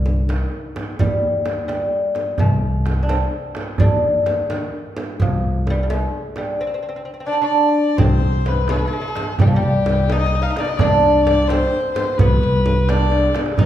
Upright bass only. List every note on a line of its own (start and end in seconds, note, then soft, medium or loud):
0.00 0.43 C2 medium
0.99 1.83 D#2 medium
2.38 3.22 C2 medium
3.80 4.63 D#2 medium
5.20 6.03 C2 medium
7.98 8.82 C2 medium
9.39 9.60 C2 medium
9.62 10.46 C2 medium
10.79 11.63 C2 medium
12.19 12.40 C2 medium
12.43 13.26 C2 medium
13.59 13.66 C2 medium